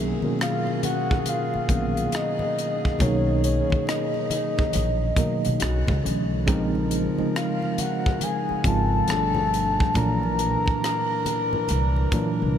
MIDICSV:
0, 0, Header, 1, 7, 480
1, 0, Start_track
1, 0, Tempo, 869565
1, 1654, Time_signature, 4, 2, 24, 8
1, 6945, End_track
2, 0, Start_track
2, 0, Title_t, "Soft synth lead"
2, 0, Program_c, 0, 80
2, 231, Note_on_c, 0, 77, 106
2, 446, Note_off_c, 0, 77, 0
2, 468, Note_on_c, 0, 78, 111
2, 709, Note_on_c, 0, 77, 109
2, 718, Note_off_c, 0, 78, 0
2, 1185, Note_on_c, 0, 75, 89
2, 1194, Note_off_c, 0, 77, 0
2, 1660, Note_off_c, 0, 75, 0
2, 1665, Note_on_c, 0, 73, 82
2, 1883, Note_off_c, 0, 73, 0
2, 1901, Note_on_c, 0, 73, 80
2, 2121, Note_off_c, 0, 73, 0
2, 2142, Note_on_c, 0, 75, 97
2, 3076, Note_off_c, 0, 75, 0
2, 4064, Note_on_c, 0, 77, 83
2, 4302, Note_on_c, 0, 78, 90
2, 4310, Note_off_c, 0, 77, 0
2, 4542, Note_on_c, 0, 80, 93
2, 4550, Note_off_c, 0, 78, 0
2, 4785, Note_on_c, 0, 81, 117
2, 4793, Note_off_c, 0, 80, 0
2, 5500, Note_off_c, 0, 81, 0
2, 5504, Note_on_c, 0, 82, 113
2, 6917, Note_off_c, 0, 82, 0
2, 6945, End_track
3, 0, Start_track
3, 0, Title_t, "Saxophone section"
3, 0, Program_c, 1, 65
3, 0, Note_on_c, 1, 51, 63
3, 0, Note_on_c, 1, 61, 56
3, 0, Note_on_c, 1, 68, 64
3, 2832, Note_off_c, 1, 61, 0
3, 2833, Note_off_c, 1, 51, 0
3, 2833, Note_off_c, 1, 68, 0
3, 3094, Note_on_c, 1, 50, 55
3, 3094, Note_on_c, 1, 61, 61
3, 3095, Note_on_c, 1, 66, 63
3, 3329, Note_off_c, 1, 61, 0
3, 3330, Note_off_c, 1, 50, 0
3, 3330, Note_off_c, 1, 66, 0
3, 3571, Note_on_c, 1, 63, 63
3, 3572, Note_on_c, 1, 53, 64
3, 3572, Note_on_c, 1, 70, 63
3, 4751, Note_off_c, 1, 53, 0
3, 4751, Note_off_c, 1, 63, 0
3, 4751, Note_off_c, 1, 70, 0
3, 5012, Note_on_c, 1, 62, 59
3, 5013, Note_on_c, 1, 53, 54
3, 5013, Note_on_c, 1, 69, 63
3, 5249, Note_off_c, 1, 53, 0
3, 5249, Note_off_c, 1, 62, 0
3, 5249, Note_off_c, 1, 69, 0
3, 5494, Note_on_c, 1, 62, 66
3, 5495, Note_on_c, 1, 52, 62
3, 5495, Note_on_c, 1, 70, 66
3, 6945, Note_off_c, 1, 52, 0
3, 6945, Note_off_c, 1, 62, 0
3, 6945, Note_off_c, 1, 70, 0
3, 6945, End_track
4, 0, Start_track
4, 0, Title_t, "Tine electric piano"
4, 0, Program_c, 2, 4
4, 0, Control_c, 2, 64, 127
4, 0, Note_on_c, 2, 47, 109
4, 0, Note_on_c, 2, 51, 90
4, 0, Note_on_c, 2, 54, 93
4, 0, Note_on_c, 2, 58, 96
4, 0, Note_on_c, 2, 61, 111
4, 89, Note_off_c, 2, 47, 0
4, 90, Note_off_c, 2, 51, 0
4, 92, Note_off_c, 2, 54, 0
4, 93, Note_off_c, 2, 58, 0
4, 94, Note_off_c, 2, 61, 0
4, 128, Note_on_c, 2, 47, 66
4, 130, Note_on_c, 2, 51, 59
4, 132, Note_on_c, 2, 54, 56
4, 135, Note_on_c, 2, 58, 55
4, 137, Note_on_c, 2, 61, 65
4, 884, Note_off_c, 2, 47, 0
4, 885, Note_off_c, 2, 51, 0
4, 886, Note_off_c, 2, 54, 0
4, 888, Note_off_c, 2, 58, 0
4, 889, Note_off_c, 2, 61, 0
4, 934, Note_on_c, 2, 59, 68
4, 938, Note_on_c, 2, 51, 68
4, 941, Note_on_c, 2, 54, 62
4, 943, Note_on_c, 2, 58, 68
4, 944, Note_on_c, 2, 61, 78
4, 1610, Note_off_c, 2, 59, 0
4, 1612, Note_off_c, 2, 51, 0
4, 1614, Note_off_c, 2, 54, 0
4, 1615, Note_off_c, 2, 58, 0
4, 1615, Note_off_c, 2, 61, 0
4, 1655, Note_on_c, 2, 47, 91
4, 1657, Note_on_c, 2, 51, 87
4, 1660, Note_on_c, 2, 54, 80
4, 1662, Note_on_c, 2, 58, 77
4, 1663, Note_on_c, 2, 63, 98
4, 2556, Note_off_c, 2, 47, 0
4, 2557, Note_off_c, 2, 51, 0
4, 2558, Note_off_c, 2, 54, 0
4, 2559, Note_off_c, 2, 58, 0
4, 2560, Note_off_c, 2, 63, 0
4, 2852, Note_on_c, 2, 47, 82
4, 2855, Note_on_c, 2, 51, 85
4, 2857, Note_on_c, 2, 54, 79
4, 2859, Note_on_c, 2, 58, 83
4, 2862, Note_on_c, 2, 63, 96
4, 3093, Note_off_c, 2, 47, 0
4, 3095, Note_off_c, 2, 51, 0
4, 3096, Note_off_c, 2, 54, 0
4, 3097, Note_off_c, 2, 58, 0
4, 3098, Note_off_c, 2, 63, 0
4, 3100, Control_c, 2, 64, 0
4, 3211, Control_c, 2, 64, 127
4, 3331, Note_on_c, 2, 50, 75
4, 3332, Note_on_c, 2, 52, 70
4, 3334, Note_on_c, 2, 54, 70
4, 3338, Note_on_c, 2, 57, 65
4, 3341, Note_on_c, 2, 61, 79
4, 3558, Note_off_c, 2, 50, 0
4, 3559, Note_off_c, 2, 52, 0
4, 3560, Note_off_c, 2, 54, 0
4, 3562, Note_off_c, 2, 57, 0
4, 3563, Note_off_c, 2, 61, 0
4, 3567, Note_on_c, 2, 49, 105
4, 3570, Note_on_c, 2, 53, 97
4, 3571, Note_on_c, 2, 56, 100
4, 3574, Note_on_c, 2, 60, 105
4, 3577, Note_on_c, 2, 63, 119
4, 3581, Control_c, 2, 64, 0
4, 3673, Control_c, 2, 64, 127
4, 3924, Note_off_c, 2, 49, 0
4, 3926, Note_off_c, 2, 53, 0
4, 3927, Note_off_c, 2, 56, 0
4, 3928, Note_off_c, 2, 60, 0
4, 3930, Note_off_c, 2, 63, 0
4, 3962, Note_on_c, 2, 49, 64
4, 3965, Note_on_c, 2, 53, 57
4, 3967, Note_on_c, 2, 56, 60
4, 3970, Note_on_c, 2, 60, 60
4, 3974, Note_on_c, 2, 63, 74
4, 4721, Note_off_c, 2, 49, 0
4, 4723, Note_off_c, 2, 53, 0
4, 4723, Note_off_c, 2, 56, 0
4, 4725, Note_off_c, 2, 60, 0
4, 4727, Note_off_c, 2, 63, 0
4, 4768, Note_on_c, 2, 49, 73
4, 4770, Note_on_c, 2, 53, 64
4, 4773, Note_on_c, 2, 56, 70
4, 4776, Note_on_c, 2, 60, 68
4, 4778, Note_on_c, 2, 65, 75
4, 5004, Note_off_c, 2, 53, 0
4, 5008, Note_on_c, 2, 47, 73
4, 5010, Note_on_c, 2, 53, 72
4, 5011, Note_off_c, 2, 49, 0
4, 5013, Note_on_c, 2, 55, 69
4, 5014, Note_off_c, 2, 56, 0
4, 5015, Note_off_c, 2, 60, 0
4, 5015, Note_on_c, 2, 57, 68
4, 5016, Note_off_c, 2, 65, 0
4, 5018, Note_on_c, 2, 62, 81
4, 5022, Control_c, 2, 64, 0
4, 5134, Control_c, 2, 64, 127
4, 5462, Note_off_c, 2, 47, 0
4, 5463, Note_off_c, 2, 53, 0
4, 5464, Note_off_c, 2, 55, 0
4, 5465, Note_off_c, 2, 57, 0
4, 5467, Note_off_c, 2, 62, 0
4, 5491, Note_on_c, 2, 46, 88
4, 5493, Note_on_c, 2, 52, 77
4, 5497, Note_on_c, 2, 54, 90
4, 5497, Note_on_c, 2, 58, 79
4, 5501, Note_on_c, 2, 62, 92
4, 5502, Control_c, 2, 64, 0
4, 5588, Control_c, 2, 64, 127
4, 6394, Note_off_c, 2, 46, 0
4, 6395, Note_off_c, 2, 52, 0
4, 6397, Note_off_c, 2, 54, 0
4, 6397, Note_off_c, 2, 58, 0
4, 6399, Note_off_c, 2, 62, 0
4, 6692, Note_on_c, 2, 46, 87
4, 6694, Note_on_c, 2, 52, 80
4, 6696, Note_on_c, 2, 54, 83
4, 6699, Note_on_c, 2, 58, 74
4, 6702, Note_on_c, 2, 62, 90
4, 6945, Note_off_c, 2, 46, 0
4, 6945, Note_off_c, 2, 52, 0
4, 6945, Note_off_c, 2, 54, 0
4, 6945, Note_off_c, 2, 58, 0
4, 6945, Note_off_c, 2, 62, 0
4, 6945, End_track
5, 0, Start_track
5, 0, Title_t, "Upright bass"
5, 0, Program_c, 3, 32
5, 0, Note_on_c, 3, 35, 94
5, 62, Note_off_c, 3, 35, 0
5, 936, Note_on_c, 3, 34, 79
5, 1133, Note_off_c, 3, 34, 0
5, 1662, Note_on_c, 3, 35, 100
5, 1982, Note_off_c, 3, 35, 0
5, 2623, Note_on_c, 3, 34, 89
5, 2818, Note_off_c, 3, 34, 0
5, 3014, Note_on_c, 3, 35, 74
5, 3084, Note_off_c, 3, 35, 0
5, 3101, Note_on_c, 3, 35, 80
5, 3223, Note_off_c, 3, 35, 0
5, 3252, Note_on_c, 3, 37, 90
5, 3322, Note_off_c, 3, 37, 0
5, 3342, Note_on_c, 3, 35, 83
5, 3578, Note_off_c, 3, 35, 0
5, 3578, Note_on_c, 3, 34, 99
5, 3900, Note_off_c, 3, 34, 0
5, 4775, Note_on_c, 3, 32, 75
5, 4973, Note_off_c, 3, 32, 0
5, 5020, Note_on_c, 3, 31, 80
5, 5415, Note_off_c, 3, 31, 0
5, 5499, Note_on_c, 3, 34, 97
5, 5820, Note_off_c, 3, 34, 0
5, 6461, Note_on_c, 3, 36, 83
5, 6657, Note_off_c, 3, 36, 0
5, 6856, Note_on_c, 3, 36, 73
5, 6925, Note_off_c, 3, 36, 0
5, 6945, End_track
6, 0, Start_track
6, 0, Title_t, "Muted upright bass strokes"
6, 135, Note_on_c, 9, 29, 40
6, 190, Note_off_c, 9, 29, 0
6, 856, Note_on_c, 9, 29, 42
6, 911, Note_off_c, 9, 29, 0
6, 2058, Note_on_c, 9, 29, 43
6, 2114, Note_off_c, 9, 29, 0
6, 3973, Note_on_c, 9, 29, 42
6, 4028, Note_off_c, 9, 29, 0
6, 4692, Note_on_c, 9, 29, 43
6, 4747, Note_off_c, 9, 29, 0
6, 5897, Note_on_c, 9, 29, 41
6, 5952, Note_off_c, 9, 29, 0
6, 6694, Note_on_c, 9, 29, 39
6, 6750, Note_off_c, 9, 29, 0
6, 6945, End_track
7, 0, Start_track
7, 0, Title_t, "Drums"
7, 124, Note_on_c, 9, 63, 54
7, 179, Note_off_c, 9, 63, 0
7, 215, Note_on_c, 9, 62, 24
7, 227, Note_on_c, 9, 42, 73
7, 228, Note_on_c, 9, 37, 99
7, 270, Note_off_c, 9, 62, 0
7, 282, Note_off_c, 9, 42, 0
7, 283, Note_off_c, 9, 37, 0
7, 369, Note_on_c, 9, 62, 26
7, 424, Note_off_c, 9, 62, 0
7, 459, Note_on_c, 9, 42, 71
7, 459, Note_on_c, 9, 63, 72
7, 514, Note_off_c, 9, 42, 0
7, 514, Note_off_c, 9, 63, 0
7, 611, Note_on_c, 9, 64, 58
7, 613, Note_on_c, 9, 36, 79
7, 666, Note_off_c, 9, 64, 0
7, 668, Note_off_c, 9, 36, 0
7, 694, Note_on_c, 9, 42, 75
7, 694, Note_on_c, 9, 62, 31
7, 694, Note_on_c, 9, 63, 48
7, 749, Note_off_c, 9, 42, 0
7, 749, Note_off_c, 9, 62, 0
7, 749, Note_off_c, 9, 63, 0
7, 849, Note_on_c, 9, 62, 26
7, 904, Note_off_c, 9, 62, 0
7, 931, Note_on_c, 9, 63, 59
7, 932, Note_on_c, 9, 36, 86
7, 935, Note_on_c, 9, 42, 65
7, 986, Note_off_c, 9, 63, 0
7, 987, Note_off_c, 9, 36, 0
7, 990, Note_off_c, 9, 42, 0
7, 1089, Note_on_c, 9, 42, 38
7, 1144, Note_off_c, 9, 42, 0
7, 1172, Note_on_c, 9, 42, 76
7, 1186, Note_on_c, 9, 37, 99
7, 1227, Note_off_c, 9, 42, 0
7, 1241, Note_off_c, 9, 37, 0
7, 1321, Note_on_c, 9, 62, 28
7, 1321, Note_on_c, 9, 63, 56
7, 1321, Note_on_c, 9, 64, 57
7, 1376, Note_off_c, 9, 62, 0
7, 1376, Note_off_c, 9, 63, 0
7, 1376, Note_off_c, 9, 64, 0
7, 1427, Note_on_c, 9, 42, 54
7, 1482, Note_off_c, 9, 42, 0
7, 1574, Note_on_c, 9, 36, 78
7, 1629, Note_off_c, 9, 36, 0
7, 1649, Note_on_c, 9, 64, 59
7, 1657, Note_on_c, 9, 36, 95
7, 1657, Note_on_c, 9, 42, 71
7, 1704, Note_off_c, 9, 64, 0
7, 1712, Note_off_c, 9, 36, 0
7, 1712, Note_off_c, 9, 42, 0
7, 1898, Note_on_c, 9, 42, 56
7, 1953, Note_off_c, 9, 42, 0
7, 2044, Note_on_c, 9, 63, 59
7, 2055, Note_on_c, 9, 36, 77
7, 2099, Note_off_c, 9, 63, 0
7, 2111, Note_off_c, 9, 36, 0
7, 2136, Note_on_c, 9, 62, 27
7, 2145, Note_on_c, 9, 42, 70
7, 2146, Note_on_c, 9, 37, 96
7, 2191, Note_off_c, 9, 62, 0
7, 2201, Note_off_c, 9, 42, 0
7, 2202, Note_off_c, 9, 37, 0
7, 2286, Note_on_c, 9, 62, 26
7, 2341, Note_off_c, 9, 62, 0
7, 2375, Note_on_c, 9, 63, 74
7, 2378, Note_on_c, 9, 42, 79
7, 2431, Note_off_c, 9, 63, 0
7, 2433, Note_off_c, 9, 42, 0
7, 2528, Note_on_c, 9, 64, 61
7, 2532, Note_on_c, 9, 36, 80
7, 2583, Note_off_c, 9, 64, 0
7, 2587, Note_off_c, 9, 36, 0
7, 2611, Note_on_c, 9, 62, 31
7, 2611, Note_on_c, 9, 63, 46
7, 2612, Note_on_c, 9, 42, 76
7, 2666, Note_off_c, 9, 62, 0
7, 2666, Note_off_c, 9, 63, 0
7, 2668, Note_off_c, 9, 42, 0
7, 2851, Note_on_c, 9, 36, 92
7, 2853, Note_on_c, 9, 63, 60
7, 2854, Note_on_c, 9, 42, 66
7, 2906, Note_off_c, 9, 36, 0
7, 2908, Note_off_c, 9, 63, 0
7, 2909, Note_off_c, 9, 42, 0
7, 3006, Note_on_c, 9, 42, 42
7, 3062, Note_off_c, 9, 42, 0
7, 3091, Note_on_c, 9, 42, 74
7, 3093, Note_on_c, 9, 62, 28
7, 3104, Note_on_c, 9, 37, 100
7, 3146, Note_off_c, 9, 42, 0
7, 3149, Note_off_c, 9, 62, 0
7, 3160, Note_off_c, 9, 37, 0
7, 3243, Note_on_c, 9, 62, 25
7, 3243, Note_on_c, 9, 63, 57
7, 3243, Note_on_c, 9, 64, 59
7, 3248, Note_on_c, 9, 36, 87
7, 3298, Note_off_c, 9, 62, 0
7, 3298, Note_off_c, 9, 63, 0
7, 3298, Note_off_c, 9, 64, 0
7, 3303, Note_off_c, 9, 36, 0
7, 3345, Note_on_c, 9, 42, 59
7, 3401, Note_off_c, 9, 42, 0
7, 3571, Note_on_c, 9, 62, 26
7, 3571, Note_on_c, 9, 64, 61
7, 3575, Note_on_c, 9, 36, 102
7, 3575, Note_on_c, 9, 42, 71
7, 3626, Note_off_c, 9, 62, 0
7, 3626, Note_off_c, 9, 64, 0
7, 3630, Note_off_c, 9, 36, 0
7, 3630, Note_off_c, 9, 42, 0
7, 3727, Note_on_c, 9, 62, 26
7, 3782, Note_off_c, 9, 62, 0
7, 3814, Note_on_c, 9, 42, 62
7, 3870, Note_off_c, 9, 42, 0
7, 3966, Note_on_c, 9, 63, 55
7, 4022, Note_off_c, 9, 63, 0
7, 4063, Note_on_c, 9, 42, 71
7, 4064, Note_on_c, 9, 37, 95
7, 4119, Note_off_c, 9, 42, 0
7, 4120, Note_off_c, 9, 37, 0
7, 4209, Note_on_c, 9, 62, 25
7, 4264, Note_off_c, 9, 62, 0
7, 4295, Note_on_c, 9, 42, 76
7, 4297, Note_on_c, 9, 63, 78
7, 4351, Note_off_c, 9, 42, 0
7, 4352, Note_off_c, 9, 63, 0
7, 4450, Note_on_c, 9, 36, 86
7, 4450, Note_on_c, 9, 64, 54
7, 4505, Note_off_c, 9, 36, 0
7, 4505, Note_off_c, 9, 64, 0
7, 4532, Note_on_c, 9, 42, 81
7, 4532, Note_on_c, 9, 62, 33
7, 4532, Note_on_c, 9, 63, 49
7, 4587, Note_off_c, 9, 42, 0
7, 4587, Note_off_c, 9, 62, 0
7, 4587, Note_off_c, 9, 63, 0
7, 4687, Note_on_c, 9, 62, 26
7, 4742, Note_off_c, 9, 62, 0
7, 4770, Note_on_c, 9, 36, 96
7, 4772, Note_on_c, 9, 63, 65
7, 4774, Note_on_c, 9, 42, 63
7, 4826, Note_off_c, 9, 36, 0
7, 4828, Note_off_c, 9, 63, 0
7, 4829, Note_off_c, 9, 42, 0
7, 5010, Note_on_c, 9, 42, 72
7, 5011, Note_on_c, 9, 62, 29
7, 5024, Note_on_c, 9, 37, 103
7, 5065, Note_off_c, 9, 42, 0
7, 5067, Note_off_c, 9, 62, 0
7, 5079, Note_off_c, 9, 37, 0
7, 5159, Note_on_c, 9, 62, 27
7, 5159, Note_on_c, 9, 63, 65
7, 5159, Note_on_c, 9, 64, 60
7, 5215, Note_off_c, 9, 62, 0
7, 5215, Note_off_c, 9, 63, 0
7, 5215, Note_off_c, 9, 64, 0
7, 5265, Note_on_c, 9, 42, 55
7, 5320, Note_off_c, 9, 42, 0
7, 5411, Note_on_c, 9, 36, 89
7, 5467, Note_off_c, 9, 36, 0
7, 5489, Note_on_c, 9, 62, 25
7, 5489, Note_on_c, 9, 64, 59
7, 5494, Note_on_c, 9, 36, 104
7, 5494, Note_on_c, 9, 42, 69
7, 5544, Note_off_c, 9, 62, 0
7, 5544, Note_off_c, 9, 64, 0
7, 5549, Note_off_c, 9, 42, 0
7, 5550, Note_off_c, 9, 36, 0
7, 5647, Note_on_c, 9, 62, 25
7, 5702, Note_off_c, 9, 62, 0
7, 5735, Note_on_c, 9, 42, 61
7, 5790, Note_off_c, 9, 42, 0
7, 5884, Note_on_c, 9, 63, 58
7, 5893, Note_on_c, 9, 36, 91
7, 5939, Note_off_c, 9, 63, 0
7, 5948, Note_off_c, 9, 36, 0
7, 5984, Note_on_c, 9, 42, 71
7, 5985, Note_on_c, 9, 37, 94
7, 6039, Note_off_c, 9, 42, 0
7, 6040, Note_off_c, 9, 37, 0
7, 6214, Note_on_c, 9, 63, 70
7, 6216, Note_on_c, 9, 42, 73
7, 6269, Note_off_c, 9, 63, 0
7, 6271, Note_off_c, 9, 42, 0
7, 6364, Note_on_c, 9, 64, 61
7, 6419, Note_off_c, 9, 64, 0
7, 6447, Note_on_c, 9, 63, 50
7, 6451, Note_on_c, 9, 42, 73
7, 6502, Note_off_c, 9, 63, 0
7, 6506, Note_off_c, 9, 42, 0
7, 6604, Note_on_c, 9, 62, 25
7, 6659, Note_off_c, 9, 62, 0
7, 6688, Note_on_c, 9, 63, 60
7, 6690, Note_on_c, 9, 36, 100
7, 6692, Note_on_c, 9, 42, 65
7, 6743, Note_off_c, 9, 63, 0
7, 6745, Note_off_c, 9, 36, 0
7, 6747, Note_off_c, 9, 42, 0
7, 6945, End_track
0, 0, End_of_file